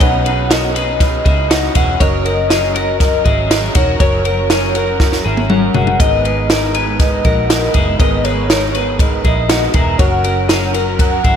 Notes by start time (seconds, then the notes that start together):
Already playing: B3 C#4 D#4 B4
0.00 B1 B2 D#3 F#3 C#4 D#4 B4 D#5 F#5, kick, ride
0.24 F#3 C#4 D#4 G#4 B4, ride
0.49 B2 D#3 F#3 C#4 D#4 F#4 A#4 B4 D#5, snare, ride
0.75 F#3 C#4 D#4 G#4 B4, ride
0.99 F#3 C#4 D#4 B4 D#5, kick, snare, ride
1.24 C#2 F#3 C#4 D#4 E4 G#4 B4, kick, ride
1.49 B2 D#3 F#3 C#4 D#4 F#4 B4, snare, ride
1.74 E1 F#3 C#4 D#4 E4 G#4 B4 F#5, kick, ride
1.99 F#1 F#3 C#4 F#4 A#4 C#5 D#5, kick, ride
2.24 C#4 F#4 A#4, ride
2.49 F#3 C#4 F#4 G#4 A#4, snare, ride
2.74 C#4 F#4 A#4, ride
2.99 F#3 C#4 F#4 A#4 D#5, kick, snare, ride
3.24 G#1 C#4 E4 F#4 G#4 A#4, kick, ride
3.49 F#3 C#4 F#4 A#4, snare, ride
3.74 E1 C#4 D#4 F#4 A#4 C#5, kick, ride
3.99 F#1 F#3 C#4 F#4 A#4 C#5, kick, ride
4.24 C#4 F#4 A#4, ride
4.50 F#3 C#4 F#4 G#4 A#4, snare, ride
4.75 C#4 F#4 A#4, ride
5.00 F#3 C#4 F#4 A#4, kick, snare
5.12 snare
5.25 G#1 C#4 E4 F#4 G#4 A#4
5.37 high tom
5.50 F#3 C#4 F#4 A#4, mid tom
5.74 F#1 C#4 E4 F#4 G#4 A#4 F#5, floor tom
5.87 floor tom
5.99 G#1 G#2 D#3 G#3 B3 D#4 G#4 A#4 B4 D#5, kick, hi-hat pedal, ride
6.25 G#3 B3 D#4 G#4 A#4 B4, ride
6.49 G#2 D#3 G#3 B3 D#4 A#4, snare, ride
6.74 G#3 B3 D#4 G#4 A#4 B4, ride
6.99 G#3 B3 D#4 A#4 D#5, kick, snare, ride
7.24 A#1 G#3 B3 D#4 F#4 A#4, kick, ride
7.49 G#2 D#3 G#3 B3 D#4 A#4 D#5, snare, ride
7.74 F#1 G#3 B3 D#4 E4 G#4 A#4, kick, ride
7.99 G#1 G#2 D#3 G#3 B3 D#4 G#4 A#4 B4 D#5, kick, ride
8.24 G#3 B3 D#4 G#4 A#4 B4 C#5, ride
8.49 G#2 D#3 G#3 B3 D#4 A#4, snare, ride
8.75 G#3 B3 D#4 G#4 A#4 B4, ride
8.99 G#3 B3 D#4 A#4 D#5, kick, ride
9.24 A#1 G#3 B3 D#4 E4 G#4 A#4, kick, ride
9.49 G#2 D#3 G#3 B3 D#4 F#4 A#4, snare, ride
9.74 E1 G#3 B3 D#4 E4 G#4 A#4 A#5, kick, ride
9.98 F#1 F#3 C#4 F#4 A#4 C#5 F#5, kick, ride
10.24 C#4 F#4 A#4, ride
10.49 F#3 C#4 F#4 G#4 A#4, snare, ride
10.74 C#4 F#4 A#4, ride
10.98 F#3 C#4 F#4 A#4 F#5, kick, ride
11.24 G#1 C#4 E4 F#4 G#4 A#4, kick, ride